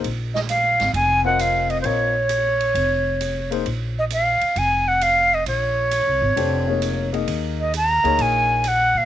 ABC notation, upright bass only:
X:1
M:4/4
L:1/8
Q:"Swing" 1/4=133
K:Bbm
V:1 name="Upright bass" clef=bass
B,,,3 A,,, F,,,4 | B,,,4 F,,,4 | B,,,3 z F,,,4 | B,,,2- (3B,,, C,, A,,, F,,,4 |
E,,3 =D,, B,,,3 B,, |]